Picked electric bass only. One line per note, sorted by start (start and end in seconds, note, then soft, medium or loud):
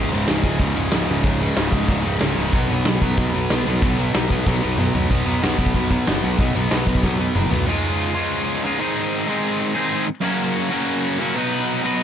0.13 0.25 C#1 medium
0.29 0.41 C#1 loud
0.44 0.56 C#1 medium
0.60 0.72 C#2 loud
0.77 0.89 C#1 medium
0.93 1.05 C#1 medium
1.09 1.21 C#1 medium
1.24 1.49 C#1 loud
1.57 1.69 C#1 medium
1.72 1.85 C#1 medium
1.89 2.01 C#1 loud
2.05 2.17 C#1 medium
2.21 2.33 C#1 medium
2.38 2.50 C#1 medium
2.54 2.66 B1 loud
2.70 2.82 B1 medium
2.87 2.99 B1 medium
3.02 3.14 B1 medium
3.18 3.30 B1 loud
3.34 3.46 B1 medium
3.51 3.63 B1 loud
3.67 3.79 B1 loud
3.83 4.07 B1 medium
4.16 4.27 B1 medium
4.31 4.43 B1 medium
4.47 4.59 B1 loud
4.64 4.76 B1 loud
4.79 4.91 B1 medium
4.94 5.07 B1 medium
5.11 5.22 B1 medium
5.28 5.39 B1 medium
5.43 5.55 B1 medium
5.59 5.70 B1 medium
5.75 5.98 B1 loud
6.08 6.19 F#1 medium
6.24 6.35 B1 loud
6.39 6.50 B1 loud
6.56 6.67 B1 medium
6.71 6.83 B1 medium
6.87 6.98 B1 medium
7.03 7.26 B1 loud
7.36 7.47 F#1 medium
7.51 7.63 B1 medium